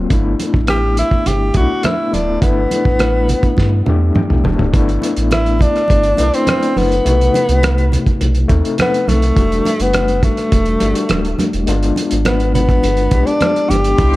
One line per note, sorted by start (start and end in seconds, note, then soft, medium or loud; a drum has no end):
0.00 0.13 F#3 medium
0.00 0.13 A#3 medium
0.00 0.13 C4 medium
0.00 0.13 F4 medium
0.00 0.12 F#4 medium
0.10 0.35 G1 loud
0.10 1.19 A3 medium
0.10 1.19 B3 medium
0.10 1.20 D4 medium
0.10 1.21 E4 medium
0.10 kick loud
0.10 closed hi-hat medium
0.40 closed hi-hat medium
0.40 muted conga medium
0.54 1.03 A1 medium
0.54 kick medium
0.67 0.96 G4 medium
0.67 cross-stick loud
0.67 closed hi-hat medium
0.67 high conga medium
0.97 1.28 E4 medium
0.97 closed hi-hat medium
0.97 muted conga soft
1.11 kick medium
1.11 cross-stick soft
1.26 1.51 G1 loud
1.26 1.58 G4 medium
1.26 closed hi-hat medium
1.26 muted conga soft
1.26 low conga medium
1.54 1.67 B1 medium
1.54 2.09 A3 medium
1.54 2.09 B3 medium
1.54 2.10 D4 medium
1.54 2.10 E4 medium
1.54 1.86 F#4 medium
1.54 kick medium
1.54 closed hi-hat medium
1.54 muted conga soft
1.83 2.16 E4 medium
1.83 cross-stick loud
1.83 closed hi-hat medium
1.83 high conga medium
2.11 2.38 D1 medium
2.11 2.39 A3 medium
2.11 2.40 B3 medium
2.11 2.41 D4 medium
2.11 2.42 D4 medium
2.11 2.41 E4 medium
2.11 closed hi-hat medium
2.11 high conga medium
2.40 2.66 G1 loud
2.40 3.50 A3 medium
2.40 3.51 B3 medium
2.40 4.12 B3 medium
2.40 3.51 D4 medium
2.40 3.52 E4 medium
2.40 kick loud
2.40 closed hi-hat medium
2.71 closed hi-hat medium
2.71 muted conga medium
2.85 3.34 A1 medium
2.85 kick medium
2.99 cross-stick loud
2.99 closed hi-hat medium
2.99 high conga medium
3.28 closed hi-hat medium
3.28 muted conga soft
3.28 low conga medium
3.43 kick medium
3.43 closed hi-hat soft
3.57 3.82 G2 loud
3.57 kick medium
3.57 snare soft
3.57 muted conga soft
3.86 4.11 E2 medium
3.86 4.40 A3 medium
3.86 4.41 B3 medium
3.86 4.41 D4 medium
3.86 4.42 G4 medium
3.86 4.14 E5 medium
3.86 high tom medium
3.86 muted conga soft
4.15 4.43 G5 medium
4.15 mid tom medium
4.15 high conga medium
4.30 4.43 B1 medium
4.30 mid tom medium
4.44 4.57 E1 medium
4.44 4.71 A3 medium
4.44 4.72 B3 medium
4.44 4.72 D4 medium
4.44 4.73 F#4 medium
4.44 4.72 A5 medium
4.44 floor tom medium
4.44 high conga medium
4.59 4.72 D1 loud
4.59 floor tom medium
4.72 4.98 G1 loud
4.72 5.81 A3 medium
4.72 5.82 B3 medium
4.72 5.82 D4 medium
4.72 5.83 E4 medium
4.72 kick loud
4.72 closed hi-hat medium
4.89 closed hi-hat soft
5.02 closed hi-hat medium
5.02 muted conga soft
5.17 5.66 A1 medium
5.17 closed hi-hat soft
5.31 5.63 E4 medium
5.31 cross-stick loud
5.31 closed hi-hat medium
5.31 high conga medium
5.46 closed hi-hat soft
5.59 6.36 D4 loud
5.59 kick medium
5.59 closed hi-hat medium
5.59 muted conga soft
5.76 cross-stick soft
5.76 closed hi-hat soft
5.88 6.14 G1 loud
5.88 kick medium
5.88 closed hi-hat medium
5.88 muted conga soft
6.03 closed hi-hat soft
6.17 6.31 B1 medium
6.17 6.99 A3 medium
6.17 7.00 D4 medium
6.17 7.01 E4 medium
6.17 7.00 B4 medium
6.17 closed hi-hat medium
6.17 muted conga medium
6.34 6.80 C4 medium
6.34 closed hi-hat medium
6.47 cross-stick loud
6.47 closed hi-hat medium
6.47 high conga medium
6.63 closed hi-hat soft
6.76 7.01 F#1 medium
6.76 8.22 B3 medium
6.76 cross-stick soft
6.76 open hi-hat soft
6.76 high conga medium
6.92 closed hi-hat soft
7.04 7.30 B1 loud
7.04 8.14 C3 medium
7.04 8.13 A3 medium
7.04 8.14 D#4 medium
7.04 8.15 F#4 medium
7.04 closed hi-hat medium
7.21 closed hi-hat soft
7.34 closed hi-hat medium
7.34 muted conga medium
7.49 7.97 C2 medium
7.49 closed hi-hat medium
7.63 cross-stick loud
7.63 closed hi-hat medium
7.63 high conga medium
7.78 closed hi-hat soft
7.92 closed hi-hat medium
7.92 muted conga soft
7.92 low conga medium
8.06 kick medium
8.06 closed hi-hat soft
8.21 8.46 B1 loud
8.21 closed hi-hat medium
8.21 muted conga soft
8.35 closed hi-hat soft
8.48 8.62 D#2 medium
8.48 9.30 A3 medium
8.48 9.31 C4 medium
8.48 9.32 D#4 medium
8.48 9.32 A4 medium
8.48 kick medium
8.48 closed hi-hat medium
8.48 muted conga soft
8.65 closed hi-hat medium
8.78 9.10 B3 loud
8.78 cross-stick loud
8.78 closed hi-hat medium
8.78 high conga medium
8.94 closed hi-hat soft
9.08 9.32 B1 medium
9.08 9.83 A3 loud
9.08 cross-stick soft
9.08 closed hi-hat medium
9.08 high conga medium
9.22 closed hi-hat soft
9.35 9.61 E1 loud
9.35 10.44 G3 medium
9.35 10.45 A3 medium
9.35 10.46 D4 medium
9.35 10.46 F#4 medium
9.35 kick loud
9.35 closed hi-hat medium
9.52 closed hi-hat soft
9.65 closed hi-hat medium
9.65 muted conga medium
9.80 10.29 F#1 medium
9.80 10.24 B3 medium
9.80 closed hi-hat medium
9.93 cross-stick loud
9.93 closed hi-hat medium
9.93 high conga medium
10.08 closed hi-hat soft
10.23 11.64 A3 medium
10.23 kick medium
10.23 closed hi-hat medium
10.23 muted conga soft
10.37 cross-stick soft
10.37 closed hi-hat soft
10.52 10.77 E1 loud
10.52 kick medium
10.52 closed hi-hat medium
10.52 muted conga soft
10.65 closed hi-hat soft
10.80 10.93 G1 medium
10.80 11.62 G3 medium
10.80 11.62 A3 medium
10.80 11.63 D4 medium
10.80 11.64 F#4 medium
10.80 closed hi-hat medium
10.80 muted conga medium
10.95 closed hi-hat soft
11.09 11.35 D1 medium
11.09 cross-stick loud
11.09 closed hi-hat medium
11.09 high conga medium
11.25 closed hi-hat soft
11.39 cross-stick soft
11.39 closed hi-hat medium
11.39 high conga medium
11.53 11.66 E1 loud
11.53 closed hi-hat soft
11.66 11.92 G1 loud
11.66 12.76 G#3 medium
11.66 12.76 B3 medium
11.66 12.77 D4 medium
11.66 12.77 F4 loud
11.66 closed hi-hat medium
11.83 closed hi-hat soft
11.96 closed hi-hat medium
11.96 muted conga medium
12.11 12.80 G#1 medium
12.11 closed hi-hat medium
12.25 12.53 B3 medium
12.25 cross-stick loud
12.25 closed hi-hat medium
12.25 high conga medium
12.40 closed hi-hat soft
12.54 13.28 B3 medium
12.54 closed hi-hat medium
12.54 low conga medium
12.69 kick medium
12.69 cross-stick soft
12.69 closed hi-hat soft
12.83 13.08 G1 loud
12.83 closed hi-hat medium
12.83 muted conga soft
12.97 closed hi-hat soft
13.11 13.24 B1 medium
13.11 13.93 G#3 medium
13.11 13.93 B3 medium
13.11 13.94 D4 medium
13.11 13.94 G4 medium
13.11 kick medium
13.11 closed hi-hat medium
13.11 muted conga soft
13.27 13.71 D4 medium
13.27 closed hi-hat soft
13.40 cross-stick loud
13.40 closed hi-hat medium
13.40 high conga medium
13.56 closed hi-hat soft
13.70 13.95 G1 medium
13.70 14.16 G4 loud
13.70 cross-stick soft
13.70 closed hi-hat medium
13.70 high conga medium
13.84 closed hi-hat soft
13.98 14.16 C2 medium
13.98 14.16 G3 medium
13.98 14.16 B3 medium
13.98 14.16 D4 medium
13.98 14.16 E4 medium
13.98 14.16 E5 medium
13.98 14.16 G5 medium
13.98 14.16 C6 medium
13.98 kick loud
13.98 closed hi-hat medium